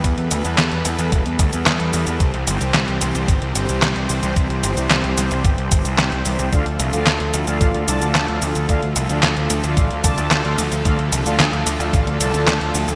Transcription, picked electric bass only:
X:1
M:4/4
L:1/16
Q:1/4=111
K:Ddor
V:1 name="Picked electric bass" clef=bass
E,, E,, D,, E,, E,, E,, E,, E,, E,,, E,, D,, E,, E,, E,, E,, E,, | C,, C,, G,,, C,, C,, C,, C,, C,, G,,, C,, G,,, C,, C,, C,, C,, C,, | C,, C,, G,,, C,, C,, C,, C,, C,, G,,, C,, G,,, C,, C,, C,, C,, C,, | D,, D,, C,, D,, D,, D,, D,, D,, A,,, D,, C,, D,, D,, D,, D,, D,, |
D,, D,, C,, D,, D,, D,, D,, D,, A,,, D,, C,, D,, D,, D,, D,, D,, | D,, D,, C,, D,, D,, D,, D,, D,, A,,, D,, C,, D,, D,, D,, D,, D,, |]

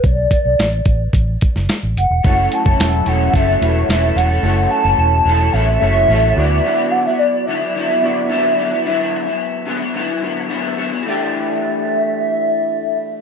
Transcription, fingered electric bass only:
X:1
M:4/4
L:1/16
Q:1/4=109
K:Edor
V:1 name="Fingered electric bass" clef=bass
B,,,2 z B,,, A,,,2 A,,,2 A,,,2 z F,,, z A,,, F,,, E,,, | F,,,2 z F,,, E,,,2 E,,,2 F,,,2 E,,,2 E,,,2 E,,,2 | F,,,2 z F,,, E,,,2 E,,,2 A,,,2 F,,,2 A,,,2 D,,2 | z16 |
z16 | z16 |]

